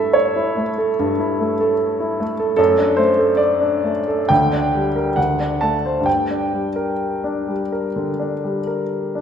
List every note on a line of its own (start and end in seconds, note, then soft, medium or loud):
0.00 0.95 G2 soft
0.00 0.57 A3 soft
0.00 0.36 E4 soft
0.00 0.62 A4 soft
0.00 0.14 E5 medium
0.13 2.18 C#5 medium
0.36 0.70 E4 soft
0.57 0.91 A3 soft
0.78 1.12 A4 soft
0.99 2.54 G2 soft
1.19 1.52 E4 soft
1.40 1.72 A3 soft
1.60 2.23 A4 soft
2.00 2.31 E4 soft
2.20 2.51 A3 soft
2.40 2.55 A4 soft
2.57 4.26 F#2 soft
2.57 2.97 A4 medium
2.78 3.10 D4 soft
2.97 3.31 A3 soft
2.97 3.39 C5 medium
3.19 3.89 A4 soft
3.37 4.29 D5 medium
3.60 3.98 D4 soft
3.84 4.21 A3 soft
4.08 4.30 A4 soft
4.29 5.14 D2 soft
4.29 5.16 G5 medium
4.53 4.87 D4 soft
4.75 5.09 G3 soft
4.96 5.17 A#4 soft
5.16 6.04 D2 soft
5.16 5.61 F#5 medium
5.40 5.75 D4 soft
5.61 5.98 A3 soft
5.61 6.06 A5 medium
5.86 6.07 C5 soft
6.01 7.88 G2 soft
6.06 9.21 G5 soft
6.31 6.67 D4 soft
6.53 6.90 G3 soft
6.76 7.52 A#4 soft
7.24 7.62 D4 soft
7.48 7.86 G3 soft
7.72 8.10 A#4 soft
7.96 8.34 D3 soft
8.19 8.57 D4 soft
8.44 8.82 G3 soft
8.67 9.21 A#4 soft
9.15 9.21 D4 soft